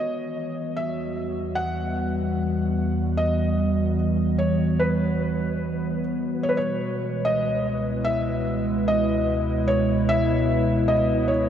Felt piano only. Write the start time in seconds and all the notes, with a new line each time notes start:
Already playing: D#5
0.77 E5
1.55 F#5
3.17 D#5
4.38 C#5
4.79 B4
6.43 C#5
6.49 B4
6.57 C#5
7.25 D#5
8.05 E5
8.88 D#5
9.68 C#5
10.09 E5
10.88 D#5
11.28 C#5